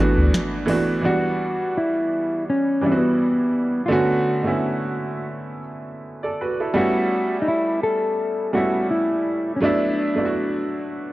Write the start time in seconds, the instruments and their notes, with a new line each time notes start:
Already playing: upright piano E3 A3 B3, clean electric guitar D4
0.00 upright piano D4 F#4
0.17 sub bass D2
0.34 snare, closed hi-hat
0.66 upright piano E3 A3 B3 D4 F#4, open hi-hat
1.01 upright piano E3 F#3 B3 D4 F#4
1.06 upright piano G3, clean electric guitar F#4
1.77 clean electric guitar E4
2.50 clean electric guitar C#4
2.81 upright piano E3 G3 B3 D4
2.86 clean electric guitar B3, upright piano E4
2.92 upright piano F#4
3.86 upright piano D3 A3, clean electric guitar F4
3.90 upright piano B3 C#4 F#4, clean electric guitar F#4
4.43 upright piano D3 A3 B3 C#4 E4
6.23 upright piano A4 D5
6.41 upright piano F#4 B4
6.60 upright piano E4 A4
6.74 upright piano G3 A3 B3 C#4, clean electric guitar F#4
6.78 upright piano E4
7.42 clean electric guitar D#4
7.48 clean electric guitar E4
7.83 clean electric guitar A4
8.53 upright piano G3 A3 B3 C#4 E4, clean electric guitar F#4
8.91 clean electric guitar E4
9.56 clean electric guitar C#4
9.61 upright piano F#3 A3 B3 D4, clean electric guitar D4
9.65 upright piano E4
10.15 upright piano F#3 A3 B3 D4
10.19 upright piano E4
10.25 upright piano F#4